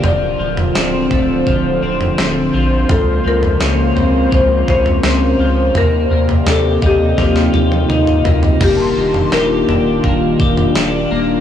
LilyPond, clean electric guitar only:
\new Staff \with { instrumentName = "Clean electric guitar" } { \time 4/4 \key ees \lydian \tempo 4 = 84 f8 f8 c'8 a8 f8 c'8 a8 f8 | f8 f8 des'8 c'8 f8 des'8 c'8 f8 | bes8 bes8 g'8 ees'8 f8 g'8 ees'8 bes8 | bes8 bes8 g'8 d'8 bes8 g'8 d'8 bes8 | }